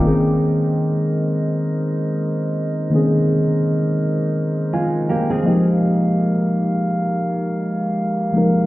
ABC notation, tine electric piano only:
X:1
M:4/4
L:1/16
Q:"Swing 16ths" 1/4=83
K:Bbdor
V:1 name="Tine electric piano"
z16 | z8 z2 a2 g f e2 | z16 |]
V:2 name="Tine electric piano"
[E,B,CDA]16 | [E,B,CDA]12- [E,B,CDA]2 [F,A,B,EG]2- | [F,A,B,EG]12- [F,A,B,EG]2 [F,A,B,EB]2 |]